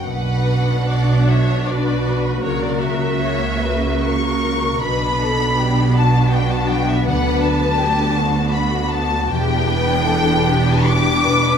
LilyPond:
<<
  \new Staff \with { instrumentName = "Violin section" } { \time 3/4 \key b \minor \tempo 4 = 78 fis''4. e''8 d''8. b'16 | cis''16 d''16 e''4. cis'''4 | b''4. a''8 g''16 a''16 g''16 e''16 | fis''8 a''4. b''8 a''8 |
g''2 d'''4 | }
  \new Staff \with { instrumentName = "Violin section" } { \time 3/4 \key b \minor b'4 d''8 cis''8 b'4 | ais'4 cis''8 b'8 ais'4 | b'8 a'8 g'8 fis'4. | b'4 g'8 fis'4. |
g'8 b'8 a'8 g'8 g'8 b'8 | }
  \new Staff \with { instrumentName = "Harp" } { \time 3/4 \key b \minor <b, fis'>8 b8 d'8 fis'8 d'8 fis8 | cis8 cis'8 fis'8 ais'8 fis'8 ais8 | b,8 b8 d'8 fis'8 d'8 fis8 | d8 d'8 fis'8 b'8 fis'8 b8 |
e,8 b8 d'8 g'8 d'8 b,8 | }
  \new Staff \with { instrumentName = "Viola section" } { \time 3/4 \key b \minor << { fis'2.~ | fis'2. | d'2.~ | d'2. |
d'2. | } \\ { d'2. | ais2. | b2.~ | b2. |
b2. | } >> }
  \new Staff \with { instrumentName = "Cello section" } { \clef bass \time 3/4 \key b \minor b,2. | cis2. | b,2. | d,2. |
e,2. | }
  \new Staff \with { instrumentName = "Double bass section" } { \clef bass \time 3/4 \key b \minor b,,2. | cis,2. | b,,2. | d,2. |
e,,2. | }
>>